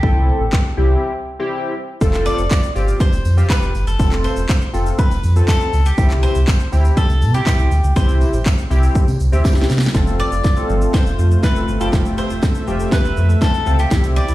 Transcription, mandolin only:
0.00 1.73 G4 medium
2.26 2.72 D5 loud
3.01 3.50 C5 loud
3.50 3.87 B4 loud
3.87 4.10 A4 medium
4.24 4.70 C5 medium
4.99 5.48 B4 medium
5.49 5.87 A4 medium
5.86 6.09 G4 medium
6.23 6.69 C5 medium
6.97 7.32 A4 medium
7.34 7.46 G4 medium
7.47 7.93 G4 medium
7.96 9.41 C5 medium
10.20 10.66 D5 loud
10.94 11.43 C5 loud
11.44 11.80 B4 loud
11.81 11.87 A4 medium
12.18 12.64 C5 medium
12.93 13.41 B4 medium
13.42 13.80 A4 medium
13.79 14.02 G4 medium
14.16 14.35 D5 medium

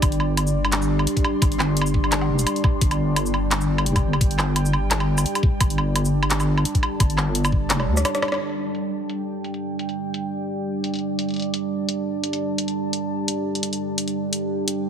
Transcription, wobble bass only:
0.02 1.06 G1 loud
1.42 2.31 G1 loud
2.29 2.45 F1 loud
2.81 3.88 G1 loud
3.86 4.02 F1 loud
4.04 4.20 G1 medium
4.21 5.25 G1 loud
5.60 6.64 G1 loud
7.00 7.72 G1 loud
7.70 7.89 F1 medium
7.87 8.05 D2 medium

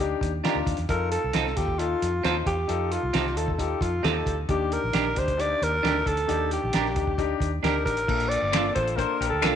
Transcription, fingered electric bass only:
0.00 0.13 D2 medium
0.21 0.40 D#2 medium
0.55 0.64 D2 medium
0.67 0.76 D#2 medium
0.78 0.87 E2 medium
0.89 1.16 F2 medium
1.24 1.33 C2 medium
1.35 1.53 C2 medium
1.57 1.93 D#2 medium
2.02 2.20 F2 medium
2.25 2.43 D#2 medium
2.46 2.65 E2 medium
2.69 2.97 F2 medium
3.03 3.12 C2 medium
3.15 3.37 C2 medium
3.37 3.73 D#2 medium
3.81 3.99 F2 medium
4.04 4.22 D#2 medium
4.26 4.45 D2 medium
4.49 4.76 D#2 loud
4.84 4.92 A#1 medium
4.94 5.12 A#1 medium
5.17 5.53 D2 medium
5.62 5.80 D#2 medium
5.84 6.02 D2 medium
6.06 6.25 D2 medium
6.30 6.57 D#2 medium
6.63 6.72 A#1 medium
6.74 6.97 A#1 medium
6.97 7.33 D2 medium
7.41 7.59 D#2 medium
7.63 7.86 D2 medium
7.86 8.04 A1 medium
8.08 8.36 A#1 medium
8.42 8.69 G1 medium
8.76 9.03 A1 medium
9.20 9.29 A#1 loud
9.32 9.41 D2 medium
9.43 9.52 C2 medium

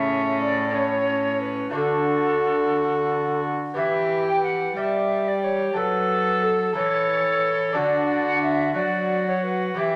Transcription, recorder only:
0.00 0.40 E5 medium
0.41 0.75 D5 medium
0.74 1.40 C#5 medium
1.41 1.74 B4 medium
1.75 3.40 A4 medium
3.76 4.23 E5 medium
4.28 4.42 G5 medium
4.43 4.76 F#5 medium
4.76 5.29 E5 medium
5.28 5.45 D5 medium
5.43 5.76 C#5 medium
5.76 6.44 B4 medium
6.42 6.75 A4 medium
6.75 7.76 C#5 loud
7.74 8.25 D5 medium
8.25 8.41 F#5 medium
8.41 8.74 E5 medium
8.75 9.25 D5 medium
9.27 9.45 C#5 medium
9.43 9.77 B4 medium
9.78 9.96 E5 medium

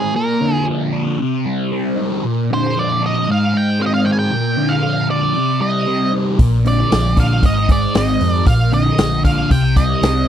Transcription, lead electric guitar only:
0.00 0.16 G#4 medium
0.16 0.64 A#4 medium
2.54 2.79 C5 medium
2.79 3.02 D5 medium
3.06 3.31 D#5 loud
3.32 3.57 F5 loud
3.57 3.80 G5 loud
3.82 3.86 F5 loud
3.86 3.93 D#5 medium
3.94 4.06 F5 loud
4.05 4.12 G5 loud
4.13 4.19 G#5 medium
4.19 4.72 G5 loud
4.69 5.06 F5 medium
5.10 5.61 D5 loud
5.62 6.10 D#5 medium
6.68 7.20 D5 medium
7.20 7.45 F5 medium
7.46 7.69 D#5 medium
7.72 7.97 D5 medium
7.97 8.32 D#5 medium
8.32 8.44 D5 medium
8.47 8.74 F5 medium
8.74 9.24 D#5 medium
9.25 9.49 F5 loud
9.51 9.75 G5 loud
9.77 10.25 D#5 medium

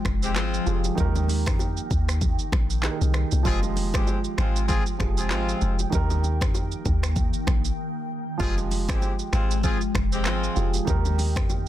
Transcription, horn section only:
0.23 0.33 G#3 medium
0.23 0.33 C4 medium
0.23 0.33 G4 loud
0.36 0.82 G#3 medium
0.36 0.82 C4 medium
0.36 0.82 F4 medium
3.45 3.59 C4 loud
3.45 3.59 F4 loud
3.45 3.59 G#4 loud
3.94 4.19 G#3 medium
3.94 4.19 C4 medium
3.94 4.19 G4 medium
4.38 4.62 G#3 medium
4.38 4.63 C4 medium
4.38 4.63 F4 loud
4.68 4.83 C4 medium
4.68 4.83 F4 medium
4.68 4.83 G#4 loud
5.18 5.28 C4 medium
5.18 5.28 F4 medium
5.18 5.28 G#4 medium
5.31 5.77 G#3 medium
5.31 5.77 C4 medium
5.31 5.77 F4 loud
8.40 8.54 C4 loud
8.40 8.54 F4 loud
8.40 8.54 G#4 loud
8.89 9.14 G#3 medium
8.89 9.14 C4 medium
8.89 9.14 G4 loud
9.33 9.57 G#3 medium
9.33 9.57 C4 medium
9.33 9.58 F4 medium
9.63 9.78 C4 medium
9.63 9.78 F4 medium
9.63 9.78 G#4 loud
10.13 10.23 G#3 medium
10.13 10.23 C4 medium
10.13 10.23 G4 medium
10.26 10.71 G#3 medium
10.26 10.71 C4 medium
10.26 10.71 F4 medium

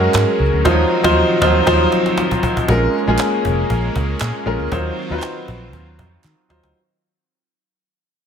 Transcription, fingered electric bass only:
0.14 0.24 G#2 medium
0.39 0.49 C#2 medium
0.53 0.61 D2 medium
0.65 0.83 D#2 loud
1.04 1.21 D#2 loud
1.41 1.59 D#2 medium
1.67 1.85 D#2 loud
2.68 2.86 A#1 loud
3.07 3.16 A#1 loud
3.45 3.62 F1 loud
3.70 3.87 A#1 medium
3.96 4.13 C#2 medium
4.21 4.30 A#2 medium
4.46 4.55 A#1 medium
4.59 4.68 D2 medium
4.72 4.89 D#2 loud
5.10 5.18 D#2 medium
5.48 5.73 A#1 medium
5.73 5.99 D#2 loud
5.99 6.16 F2 medium
6.24 6.34 D#3 loud
6.50 6.59 D#2 medium
6.63 6.71 D2 medium

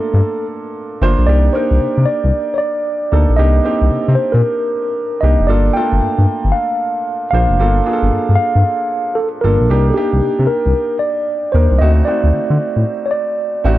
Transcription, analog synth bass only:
0.14 0.21 G2 medium
1.01 1.15 G1 medium
1.18 1.26 A#1 medium
1.28 1.49 C2 loud
1.71 1.79 C2 medium
1.81 1.87 C3 soft
1.97 2.05 C3 medium
2.24 2.31 C2 loud
3.12 3.26 D2 medium
3.29 3.37 A#1 medium
3.39 3.60 C2 loud
3.81 3.89 C2 medium
3.91 3.98 C3 soft
4.08 4.16 C3 medium
4.34 4.42 A#2 loud
5.23 5.36 C2 medium
5.39 5.47 F1 medium
5.49 5.70 G1 loud
5.92 6.00 G1 loud
6.02 6.08 G2 soft
6.18 6.26 G2 medium
6.44 6.52 G1 medium
7.33 7.46 A#1 loud
7.50 7.57 F1 medium
7.59 7.81 G1 loud
8.02 8.10 G1 loud
8.12 8.19 G2 soft
8.29 8.37 G2 medium
8.55 8.63 G2 loud
9.44 9.57 G1 medium
9.61 9.68 A#1 medium
9.70 9.91 C2 loud
10.13 10.21 C2 medium
10.39 10.47 C3 loud
10.66 10.73 C2 medium
11.54 11.68 D#2 medium
11.71 11.79 C2 medium
11.81 12.02 D2 loud
12.24 12.31 D2 medium
12.33 12.40 D3 soft
12.50 12.58 D3 loud
12.76 12.84 A2 medium
13.65 13.78 A1 medium

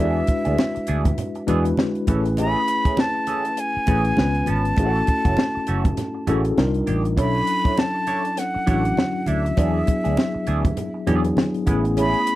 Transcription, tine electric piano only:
0.00 0.97 G#3 medium
0.00 0.97 D4 medium
0.00 0.97 E4 medium
0.00 0.97 F#4 medium
0.05 1.01 B4 medium
1.47 2.07 G#3 medium
1.47 2.07 D4 medium
1.47 2.07 E4 medium
1.47 2.08 F#4 medium
1.47 2.08 B4 medium
2.07 3.07 A3 medium
2.07 3.07 C#4 medium
2.07 3.07 E4 medium
2.07 3.08 G#4 medium
2.07 3.08 B4 medium
3.87 4.17 A3 medium
3.87 4.17 C#4 medium
3.87 4.18 E4 medium
3.87 4.18 G#4 medium
3.87 4.18 B4 medium
4.17 4.68 G#3 medium
4.17 4.68 B3 medium
4.17 4.69 C#4 medium
4.17 4.69 F4 medium
4.17 4.69 B4 medium
4.78 5.77 A3 medium
4.78 5.77 C#4 medium
4.78 5.78 E4 medium
4.78 5.78 F#4 medium
4.78 4.86 G#4 medium
4.86 5.81 A4 medium
6.28 6.58 C#4 medium
6.28 6.58 E4 medium
6.28 6.58 F#4 medium
6.28 6.58 G#4 medium
6.28 6.58 A4 medium
6.58 7.09 G3 medium
6.58 7.09 D4 medium
6.58 7.09 D#4 medium
6.58 7.09 F4 medium
6.58 7.09 A#4 medium
7.18 8.17 F#3 medium
7.18 8.17 C#4 medium
7.18 8.17 D4 medium
7.18 8.18 E4 medium
7.18 8.18 A4 medium
8.66 9.43 F#3 medium
8.66 9.43 C#4 medium
8.66 9.43 D4 medium
8.66 9.43 E4 medium
8.66 9.43 F#4 medium
9.57 10.57 F#3 medium
9.57 10.57 B3 medium
9.57 10.57 D4 medium
9.57 10.57 E4 medium
9.57 10.57 G#4 medium
11.07 11.67 F#3 medium
11.07 11.65 B3 medium
11.07 11.67 D4 medium
11.07 11.66 E4 medium
11.07 11.67 G#4 medium
11.66 12.35 A3 medium
11.66 12.35 B3 medium
11.66 12.35 C#4 medium
11.66 12.35 E4 medium
11.66 12.35 G#4 medium

